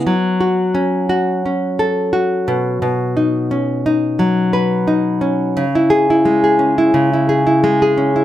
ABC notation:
X:1
M:4/4
L:1/16
Q:"Swing 16ths" 1/4=87
K:C#m
V:1 name="Nylon-string guitar"
F,2 F2 C2 F2 C2 A2 F2 B,,2 | B,,2 D2 C2 D2 F,2 B2 D2 C2 | C, E G E G, G C E C, E G E G, G C E |]